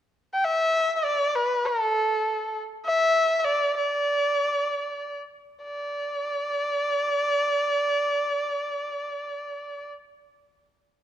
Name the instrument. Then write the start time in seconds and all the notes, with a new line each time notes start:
erhu
0.34 G5
0.45 E5
0.96 E5
1.05 D5
1.36 B4
1.66 A4
2.85 E5
3.40 E5
3.45 D5
3.78 D5
5.64 D5